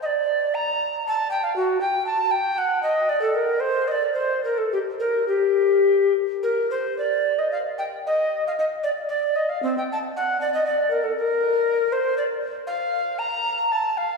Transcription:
0.02 0.56 D5 medium
0.02 0.07 D#5 medium
0.55 1.06 A#5 medium
1.08 1.30 A5 medium
1.31 1.45 G5 medium
1.44 1.55 F5 medium
1.56 1.80 F#4 medium
1.81 2.06 G5 medium
2.06 2.33 A5 medium
2.31 2.60 G5 medium
2.58 2.82 F#5 medium
2.83 3.11 D#5 medium
3.09 3.21 D5 medium
3.22 3.36 A4 medium
3.35 3.62 A#4 medium
3.60 3.89 C5 medium
3.88 4.13 D5 medium
3.88 3.93 D#5 medium
4.14 4.42 C5 medium
4.45 4.59 A#4 medium
4.58 4.72 A4 medium
4.72 4.79 G4 medium
5.00 5.28 A#4 medium
5.28 6.13 G4 medium
6.43 6.69 A#4 medium
6.71 6.97 C5 medium
6.98 7.40 D5 medium
7.39 7.51 D#5 medium
7.52 7.58 F5 medium
7.78 7.84 G5 medium
8.07 8.44 D#5 medium
8.47 8.52 F5 medium
8.59 8.65 D#5 medium
8.84 8.90 D5 medium
9.09 9.37 D5 medium
9.36 9.51 D#5 medium
9.49 9.62 F5 medium
9.63 9.77 C4 medium
9.78 9.84 G5 medium
9.92 9.98 A5 medium
10.17 10.40 F#5 medium
10.41 10.53 D5 medium
10.54 10.66 D#5 medium
10.66 10.90 D5 medium
10.91 11.05 A#4 medium
11.04 11.16 A4 medium
11.17 11.94 A#4 medium
11.92 12.17 C5 medium
12.17 12.23 D5 medium
12.67 13.20 F5 loud
13.19 13.73 A#5 loud
13.72 13.99 A5 medium
13.97 14.17 F5 medium

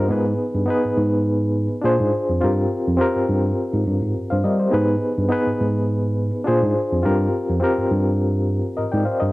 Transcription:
0.00 0.12 C4 medium
0.00 0.25 F4 medium
0.00 0.13 G4 medium
0.00 0.24 A#4 medium
0.00 0.12 C5 medium
0.00 0.12 D#5 medium
0.08 0.33 G#2 loud
0.08 0.45 B3 medium
0.08 0.46 D#4 medium
0.08 0.47 G#4 medium
0.12 0.47 B4 medium
0.55 0.65 G2 medium
0.66 1.39 B3 medium
0.66 1.40 D#4 medium
0.66 1.41 G#4 medium
0.70 1.41 B4 medium
0.85 0.90 G#2 soft
0.98 1.67 G#2 medium
1.82 1.96 A#2 medium
1.82 2.30 D4 medium
1.82 2.31 F4 medium
1.82 2.31 G#4 medium
1.82 2.32 C5 loud
2.01 2.10 G#2 medium
2.29 2.39 F2 medium
2.41 2.65 G2 medium
2.41 2.77 C4 medium
2.41 2.77 F4 medium
2.41 2.78 G4 medium
2.41 2.79 A#4 medium
2.88 2.97 F2 medium
2.97 3.70 C4 medium
2.97 3.71 F4 medium
2.97 3.71 G4 medium
2.97 3.72 A#4 medium
3.16 3.21 G2 soft
3.29 3.51 G2 medium
3.74 3.84 G#2 medium
3.87 3.99 G2 medium
4.02 4.12 G#2 medium
4.16 4.22 G2 soft
4.30 4.42 G2 medium
4.30 4.44 C5 soft
4.30 4.43 F5 medium
4.44 4.66 G3 medium
4.44 4.59 A#4 soft
4.44 4.59 D#5 medium
4.59 4.87 G4 medium
4.59 4.87 C5 medium
4.70 4.95 G#2 medium
4.70 5.08 B3 medium
4.70 5.08 D#4 medium
4.70 5.09 G#4 medium
4.70 5.09 B4 medium
5.18 5.28 G2 medium
5.28 6.01 B3 medium
5.28 6.02 D#4 medium
5.28 6.03 G#4 medium
5.28 6.03 B4 medium
5.47 5.52 G#2 soft
5.61 6.30 G#2 medium
6.44 6.59 A#2 medium
6.44 6.92 D4 medium
6.44 6.93 F4 medium
6.44 6.94 G#4 medium
6.44 6.94 C5 medium
6.63 6.73 G#2 medium
6.92 7.02 F2 medium
7.02 7.27 G2 medium
7.02 7.39 C4 medium
7.02 7.39 F4 medium
7.02 7.40 G4 medium
7.02 7.41 A#4 medium
7.50 7.59 F2 medium
7.60 8.33 C4 medium
7.60 8.33 F4 medium
7.60 8.34 G4 medium
7.60 8.35 A#4 medium
7.79 7.84 G2 soft
7.91 8.60 G2 medium
8.77 8.84 G#2 soft
8.77 8.92 A#4 medium
8.77 8.92 D#5 medium
8.92 9.03 G#2 medium
8.92 9.05 D5 medium
8.92 9.05 G5 medium
9.05 9.21 C5 medium
9.05 9.20 F5 medium
9.20 9.32 G2 medium
9.20 9.32 A#4 soft
9.20 9.32 D#5 medium

